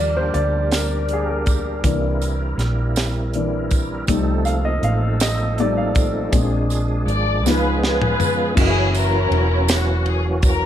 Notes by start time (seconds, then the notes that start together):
Already playing: D#2 F3 G3 A#3 D4 G4 A#4 D5
0.17 C5
0.34 D2 D5, closed hi-hat
0.72 A#4, snare, closed hi-hat, tambourine
1.09 closed hi-hat
1.13 G#4
1.30 A#4
1.46 kick, closed hi-hat, tambourine
1.83 C2 E3 A#3 C4 D4 E4, kick, closed hi-hat, tambourine
2.21 closed hi-hat, tambourine
2.58 A#1, snare, closed hi-hat
2.96 snare, closed hi-hat, tambourine
3.34 E3 A#3 D4, closed hi-hat
3.71 kick, closed hi-hat, tambourine
4.07 C2 F3 G3 A3 D#4 A4, kick, closed hi-hat, tambourine
4.45 F5, closed hi-hat, tambourine
4.65 D#5
4.83 A1 F5, closed hi-hat
5.20 D#5, snare, closed hi-hat, tambourine
5.58 G3 A3 D#4 D5, closed hi-hat
5.77 F5
5.95 kick, closed hi-hat, tambourine
6.31 A#1 G#3 A#3 C4 D4 G#4, kick, closed hi-hat, tambourine
6.70 closed hi-hat, tambourine
7.06 G#1, closed hi-hat
7.10 D5
7.43 C#2 F3 B3 C#4 G#4, snare, tambourine
7.47 D#4 F4 G#4 B4
7.84 F4 G#4 B4, snare
8.02 mid tom
8.20 floor tom, tambourine
8.55 F#1 E3 F#3 A#3 C#4 E4 F#4 G#4, kick, crash, tambourine
8.59 C#4 A#4 D#5
8.67 E5
8.95 C#4 E4 A#4, ride, tambourine
9.31 E1, ride
9.68 F#4, snare, ride, tambourine
10.06 G#4, ride
10.42 kick, ride, tambourine
10.47 A#4